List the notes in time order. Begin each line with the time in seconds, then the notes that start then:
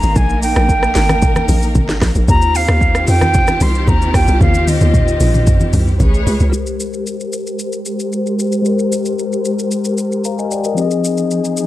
Already playing: A#3 D#4 G#4 A#5
0.03 G#1, shaker
0.16 A#1 A#4 G#5, kick, low conga, shaker
0.29 shaker
0.43 G5, open hi-hat, shaker
0.56 A#1, cross-stick, shaker
0.69 kick, shaker
0.83 cross-stick, shaker
0.95 G#1, snare, open hi-hat, shaker
1.09 cross-stick, high conga, shaker
1.22 kick, low conga, shaker
1.36 cross-stick, high conga, shaker
1.49 A#1, open hi-hat, high conga, shaker
1.62 shaker
1.75 G#1, kick, high conga, low conga, shaker
1.89 snare, shaker
2.02 A#1, kick, cross-stick, snare, open hi-hat, shaker
2.15 A#1, shaker
2.28 D#2 D#3 C4 F4 G4 A#5, kick, low conga, shaker
2.42 shaker
2.55 F5, open hi-hat, shaker
2.68 D#2, cross-stick, shaker
2.81 kick, shaker
2.95 cross-stick, shaker
3.07 F2 G5, open hi-hat, shaker
3.21 cross-stick, high conga, shaker
3.34 kick, low conga, shaker
3.47 cross-stick, high conga, shaker
3.61 C2 C6, open hi-hat, high conga, shaker
3.75 shaker
3.88 D#2 A#5, kick, high conga, low conga, shaker
4.02 shaker
4.14 D#2 G5, kick, cross-stick, open hi-hat, shaker
4.28 C2, shaker
4.41 D#2 F5, kick, high tom, low conga, shaker
4.54 high conga, shaker
4.67 D#5, open hi-hat, high tom, shaker
4.81 D#2, high tom, shaker
4.94 kick, mid tom, shaker
5.08 shaker
5.20 A#1, open hi-hat, mid tom, shaker
5.34 mid tom, high conga, shaker
5.47 kick, mid tom, low conga, shaker
5.60 high conga, shaker
5.73 C2, mid tom, open hi-hat, high conga, shaker
5.87 mid tom, shaker
6.00 A1 A3 G#4 B4 C#5, kick, floor tom, high conga, low conga, shaker
6.14 shaker
6.27 C#2, floor tom, open hi-hat, shaker
6.40 C#2, floor tom, shaker
6.50 G#3 G4 A#4 C5, shaker
6.54 A#4 C5
6.67 shaker
6.80 shaker
6.93 shaker
7.07 shaker
7.20 shaker
7.33 shaker
7.47 shaker
7.59 shaker
7.73 shaker
7.86 shaker
8.00 shaker
8.12 shaker
8.27 shaker
8.39 shaker
8.52 shaker
8.62 G#3 G4, shaker
8.67 A#4 C5
8.79 shaker
8.92 shaker
9.05 shaker
9.19 shaker
9.32 shaker
9.45 shaker
9.59 shaker
9.71 shaker
9.85 shaker
9.98 shaker
10.12 shaker
10.24 F5 A#5, shaker
10.39 D#5 G#5, shaker
10.51 D5 G5, shaker
10.64 A#4 D#5, shaker
10.75 F3 C4 D#4 G#4, shaker
10.79 G4 D#5
10.85 G#4
10.91 shaker
11.05 shaker
11.17 shaker
11.31 shaker
11.45 shaker
11.57 shaker